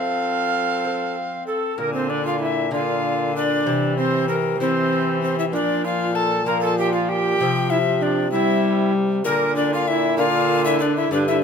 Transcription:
Already playing: lute F3, bassoon F3, viola C4, recorder A4 F5
0.84 lute C4 A4 C5
1.47 recorder A4
1.78 lute A#2, bassoon A#2, viola D3, recorder A#4
1.94 recorder C4 C5
2.10 recorder D4 D5
2.25 recorder F4 F5
2.39 recorder E4
2.43 recorder E5
2.71 viola D3, lute A#3 D4, recorder F4 F5
3.35 recorder D4 D5
3.65 bassoon C3, lute C3, viola E3
3.98 recorder C4 C5
4.29 recorder A#4
4.58 viola E3, lute C4 E4, recorder C4 C5
5.22 recorder C4 C5
5.38 recorder E4 E5
5.52 bassoon A#2, lute A#2, viola F3, recorder D4 D5
5.85 recorder F4 F5
6.14 recorder A4 A5
6.46 viola F3, lute A#3 F4, recorder A#4 A#5
6.61 recorder A4 A5
6.78 recorder G4 G5
6.93 recorder F4 F5
7.09 recorder G4 G5
7.39 lute C3 F3 C4, bassoon C3, viola F3
7.70 recorder E4 E5
8.00 recorder D4 D5
8.31 viola G3, lute C4, recorder E4 E5
8.36 lute G4
9.24 bassoon A#2, lute A#2, viola D3, recorder A#4
9.56 recorder D4 D5
9.73 recorder F4 F5
9.88 recorder E4 E5
10.18 viola D3, lute A#3 D4, recorder F4 F5
10.66 recorder E4 E5
10.80 recorder D4 D5
10.97 recorder E4 E5
11.11 lute G2, bassoon G2, viola D3, recorder D4 D5
11.28 recorder E4 E5

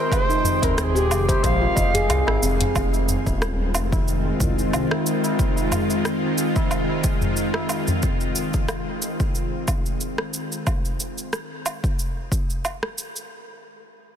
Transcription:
Already playing: synth drone D#3 G#3 C4 G5, handpan C5
0.00 native american-style wooden flute A#4
0.12 native american-style wooden flute C5, kick, closed hi-hat, cabasa, low woodblock
0.29 handpan D#4, tabla na, cabasa
0.44 tabla ge, cabasa
0.62 analog synth bass D#1, handpan C4, native american-style wooden flute A#4, kick, closed hi-hat, tabla na, tabla tin, cabasa
0.78 native american-style wooden flute A#4, cross-stick, closed hi-hat, cabasa
0.82 native american-style wooden flute G#4
0.95 handpan G4, cabasa
1.10 analog synth bass F1, cabasa, low woodblock
1.28 native american-style wooden flute G4, handpan C5, kick, closed hi-hat, tabla na, cabasa
1.44 analog synth bass A#1, native american-style wooden flute F5, kick, closed hi-hat, cabasa
1.61 handpan F4, tabla na
1.76 analog synth bass F1, handpan D#5, kick, tabla tin, cabasa
1.94 handpan G#4, closed hi-hat, tabla ge, cabasa
2.09 analog synth bass C2, handpan G#4, closed hi-hat, cabasa, low woodblock
2.26 analog synth bass G#1, cross-stick, tabla na, tabla tin
2.41 analog synth bass F1, handpan C4, tabla tin, cabasa
2.60 closed hi-hat, tabla ge, cabasa
2.75 analog synth bass F1, synth drone D#3 G#3 C4 F4, kick, cabasa, low woodblock
2.93 tabla na, cabasa
3.09 tabla ge, cabasa
3.26 analog synth bass D#1, kick, tabla tin, cabasa
3.42 cross-stick, cabasa
3.75 analog synth bass F1, cabasa, low woodblock
3.92 kick, tabla na, cabasa
4.08 cabasa
4.40 analog synth bass C2, kick, tabla ge, cabasa
4.59 cabasa
4.73 analog synth bass C2, cabasa, low woodblock
4.91 cross-stick, tabla na, tabla tin
5.06 cabasa
5.24 tabla na, cabasa
5.39 kick, cabasa
5.56 tabla na, cabasa
5.72 tabla ge, cabasa, low woodblock
5.90 tabla tin, cabasa
6.05 cross-stick, cabasa
6.38 cabasa
6.56 kick, tabla na, cabasa
6.71 cabasa, low woodblock
6.89 tabla na
7.04 kick, tabla tin, cabasa
7.21 tabla ge, cabasa
7.37 cabasa
7.54 cross-stick, tabla na, tabla tin
7.69 tabla tin, cabasa, low woodblock
7.87 tabla ge, cabasa
8.03 kick, cabasa
8.21 cabasa
8.36 cabasa
8.54 kick, cabasa
8.69 cross-stick, cabasa, low woodblock
9.02 cabasa
9.20 kick, cabasa
9.35 cabasa
9.68 kick, cabasa, low woodblock
9.86 cabasa
10.01 cabasa
10.18 cross-stick
10.34 cabasa
10.52 cabasa
10.67 kick, cabasa, low woodblock
10.85 cabasa
11.00 cabasa
11.18 cabasa
11.33 cross-stick, cabasa
11.66 cabasa, low woodblock
11.84 kick, cabasa
11.99 cabasa
12.32 kick, cabasa
12.50 cabasa
12.65 cabasa, low woodblock
12.83 cross-stick
12.98 cabasa
13.16 cabasa

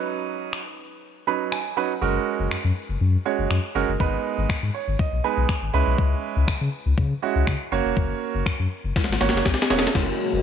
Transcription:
Already playing: grand piano F#3 C#4 D#4 B4
0.53 finger snap
1.27 grand piano F#3 C#4 D#4 B4 B5
1.52 grand piano G#5, finger snap
1.77 grand piano F#3 C#4 D#4 B4 F#5
2.01 sub bass F#1, grand piano G#3 C#4 F#4 A#4
2.40 sub bass F#1
2.51 sub bass F#2, finger snap
2.64 sub bass F#2
2.89 sub bass F#1
3.01 sub bass F#2
3.25 grand piano G#3 C#4 F#4 C#5
3.39 sub bass F#1
3.51 sub bass F#2, finger snap
3.75 sub bass F#1, grand piano G#3 C#4 F#4 A#4
3.88 sub bass F#1
4.00 sub bass G#1, grand piano G#3 B3 D#4 B4, kick
4.38 sub bass G#1
4.49 sub bass G#2, finger snap, kick
4.63 sub bass G#2
4.75 grand piano C#5
4.88 sub bass G#1
4.99 grand piano D#5, kick
5.12 sub bass B1
5.24 grand piano G#3 B3 D#4 B4 G#5
5.37 sub bass B1
5.49 finger snap, kick
5.62 sub bass G#1
5.74 sub bass C#2, grand piano G#3 C#4 E4 B4 B5
5.87 sub bass B1
5.98 sub bass C#2, kick
6.36 sub bass C#2
6.48 sub bass C#3, finger snap, kick
6.61 sub bass C#3
6.86 sub bass C#2
6.98 sub bass C#3, kick
7.22 grand piano G#3 C#4 E4 F#4
7.36 sub bass C#2
7.47 sub bass C#3, finger snap, kick
7.72 sub bass F#1, grand piano A#3 C#4 F#4 C#5
7.85 sub bass E1
7.97 sub bass F#1, kick
8.35 sub bass F#1
8.46 sub bass F#2, finger snap, kick
8.59 sub bass F#2
8.84 sub bass F#1
8.96 kick, snare
9.04 snare
9.09 sub bass G#1, snare
9.20 sub bass G#1, grand piano A#3 C#4 F#4 C#5, snare
9.29 snare
9.34 sub bass F#1, snare
9.46 sub bass A#1, kick, snare
9.54 snare
9.62 snare
9.70 sub bass E1, grand piano A#3 C#4 F#4 C#5, snare
9.79 snare
9.87 snare
9.95 sub bass F#1, french horn section C#3 F#3 G#3 A#3 F#4, grand piano G#3 C#4 A#4, kick, snare, crash, riser
10.33 sub bass F#1

